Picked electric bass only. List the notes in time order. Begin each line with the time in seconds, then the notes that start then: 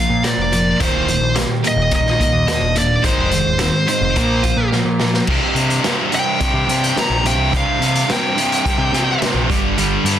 0.10 A#2
0.37 F1
0.80 D#1
0.93 D1
1.20 A#1
1.76 D#1
2.33 D#2
2.61 D#1
3.04 G#1
3.18 F1
3.46 D#1
4.01 F1
4.16 A#1
4.57 A#2
4.85 A#2
5.28 C2
5.54 C3
6.54 C3
6.67 C3
7.10 A#1
7.38 C2
7.53 C2
7.79 C3
8.78 C3
8.92 C3
9.34 A#1
9.50 G1
10.04 G2